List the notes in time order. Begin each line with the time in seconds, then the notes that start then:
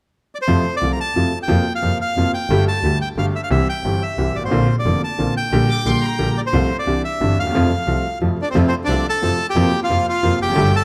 0.35 D5
0.42 C5
0.48 F2 C3 F3 A3 F4
0.76 D5
0.82 C2 C3 F3 A3 F4
0.93 A#5
1.00 A5
1.15 F2 C3 F3 A3 F4
1.43 G5
1.48 F2 C3 F3 A#3 F4
1.75 F5
1.82 F2 C3 F3 A#3 F4
2.02 F5
2.16 F2 C3 F3 A#3 F4
2.34 G5
2.49 G1 G2 D3 G3 A3 G4
2.68 A5
2.83 D2 D3 G3 A3 G4
3.01 G5
3.16 G1 G2 D3 G3 A3 G4 F5
3.36 E5
3.43 F5
3.51 C2 C3 E3 G3 C4 G4 E5
3.69 G5
3.84 G1 G2 E3 G3 C4 G4
4.03 E5
4.18 C2 C3 E3 G3 C4 G4
4.34 G#1 D5
4.39 G1
4.44 G#1 C5
4.48 A1 A#1 A#2 D3 A#3 C4 F4
4.79 D5
4.85 F1 F2 D3 A#3 C4 F4
5.04 A5
5.19 A#1 A#2 D3 A#3 C4 F4
5.37 G5
5.52 A#1 A#2 D3 G3 A#3 G4
5.70 D6
5.86 A#1 A#2 D3 G3 A#3 G4 C6
6.04 A#5
6.19 A#1 A#2 D3 G3 A#3 G4
6.38 D5
6.46 C5
6.53 C2 C3 F3 A3 F4
6.79 D5
6.87 C2 C3 E3 G3 D4
7.05 E5
7.21 G1 G2 C3 E3 G3 D4
7.38 D2 D#2 F5
7.47 D#2 E2
7.54 F2 C3 F3 A3 F4
7.87 C2 C3 F3 A3 F4
8.21 F2 C3 F3 A3 F4
8.42 D4 D5
8.50 C4 C5
8.54 F2 C3 F3 A3 C4 F4
8.67 C4 C5
8.84 D4 D5
8.88 C2 C3 F3 A3 C4 F4
9.09 A4 A5
9.22 F2 C3 F3 A3 C4 F4
9.50 G4 G5
9.55 F2 C3 F3 A#3 C4 F4
9.83 F4 F5
9.89 F2 C3 F3 A#3 C4 F4
10.09 F4 F5
10.23 F2 C3 F3 A#3 C4 F4
10.41 F1 E2 G4 G5
10.48 F2 F#2
10.55 G1 G2 D3 G3 A3 D4 G4
10.76 A4 A5